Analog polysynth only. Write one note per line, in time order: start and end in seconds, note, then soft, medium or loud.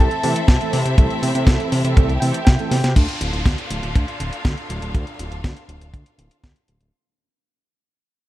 0.00 0.13 E3 medium
0.00 0.13 A3 medium
0.00 0.13 C4 medium
0.00 0.13 A4 loud
0.24 0.40 E3 loud
0.24 0.40 A3 medium
0.24 0.40 C4 loud
0.24 0.40 A4 loud
0.61 0.77 E3 medium
0.61 0.77 A3 medium
0.61 0.77 C4 medium
0.61 0.78 A4 loud
0.98 1.32 E3 medium
0.98 1.32 A3 medium
0.98 1.32 C4 medium
0.98 1.32 A4 medium
1.35 1.82 E3 medium
1.35 1.82 A3 medium
1.35 1.82 C4 medium
1.35 1.82 A4 medium
1.85 2.12 E3 medium
1.85 2.12 A3 medium
1.85 2.12 C4 medium
1.85 2.12 A4 loud
2.22 2.39 E3 loud
2.22 2.39 A3 medium
2.22 2.39 C4 medium
2.22 2.39 A4 loud
2.59 2.76 E3 medium
2.59 2.76 A3 medium
2.59 2.76 C4 medium
2.59 2.76 A4 loud